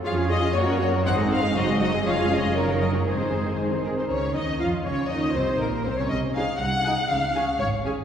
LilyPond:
<<
  \new Staff \with { instrumentName = "Violin section" } { \time 2/4 \key des \major \tempo 4 = 119 f''8 ees''8 des''8 des''8 | ges''8 f''8 ees''8 ees''8 | f''8 ees''8 des''8 ees''8 | c''4 r4 |
des''8 ees''8 f''8 des''8 | ees''8 c''8 bes'8 c''16 des''16 | r8 aes''8 r8 aes''8 | r8 aes''8 r8 aes''8 | }
  \new Staff \with { instrumentName = "Violin section" } { \time 2/4 \key des \major <f' des''>16 <aes' f''>16 <f' des''>16 <aes' f''>16 des''16 <bes' ges''>16 des''16 <bes' ges''>16 | c''16 <aes' ees''>16 c''16 <aes' ees''>16 <ges' c''>16 <aes' ees''>16 <ges' c''>16 <aes' ees''>16 | <f' des''>16 <aes' f''>16 <f' des''>16 <aes' f''>16 <des' bes'>16 <ges' des''>16 <des' bes'>16 <ges' des''>16 | <c' aes'>16 <ees' c''>16 <c' aes'>16 <ees' c''>16 <c' aes'>16 <ees' c''>16 <c' aes' bes'>16 <ees' c''>16 |
des''8 ees''8 f''8 des''8 | ees''8 c''8 bes'8 c''16 des''16 | ees''8 f''8 ges''4 | f''4 des''8 r8 | }
  \new Staff \with { instrumentName = "Viola section" } { \time 2/4 \key des \major <f' aes'>16 <des' f'>16 <f' aes'>16 <des' f'>16 <bes ges'>16 <des' bes'>16 <bes ges'>16 <des' bes'>16 | <c' ees'>16 <aes c'>16 <c' ees'>16 <aes c'>16 <ges ees'>16 <aes c'>16 <ges ees'>16 <aes c'>16 | <f des'>16 <aes f'>16 <f des'>16 <aes f'>16 <ges ees'>16 <ees des'>16 <ges ees'>16 <ees des'>16 | <aes ees'>16 <ees c'>16 <aes ees'>16 <ees c'>16 <aes ees'>16 <ees c'>16 <aes ees'>16 <ees c'>16 |
des'8 ees'8 f'8 des'8 | ees'8 c'8 bes8 c'16 des'16 | r8 <ees' aes'>8 r8 <ees' aes'>8 | r8 <des' aes'>8 r8 <des' aes'>8 | }
  \new Staff \with { instrumentName = "Cello section" } { \clef bass \time 2/4 \key des \major aes'4 ges'4 | ees'4 ges'4 | aes'4 bes'4 | aes'4. r8 |
des8 ees8 f8 des8 | ees8 c8 bes,8 c16 des16 | c4 c4 | des4 aes,4 | }
  \new Staff \with { instrumentName = "Double bass section" } { \clef bass \time 2/4 \key des \major f,4 ges,4 | aes,,4 ges,,4 | f,,4 ges,,4 | aes,,4. r8 |
des,8 ees,8 f,8 des,8 | ees,8 c,8 bes,,8 c,16 r16 | c,4 c,4 | des,4 aes,,4 | }
>>